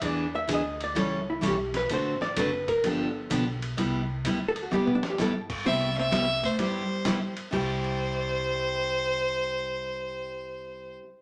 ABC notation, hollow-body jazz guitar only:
X:1
M:4/4
L:1/16
Q:"Swing" 1/4=128
K:C
V:1 name="Hollow-body jazz guitar"
d2 e2 _e2 d2 ^c2 =E2 G2 B2 | c2 d2 B2 _B2 A8- | A4 z2 A ^F G B, D G A2 z2 | C2 C4 A,2 G,6 z2 |
G16- | G16 |]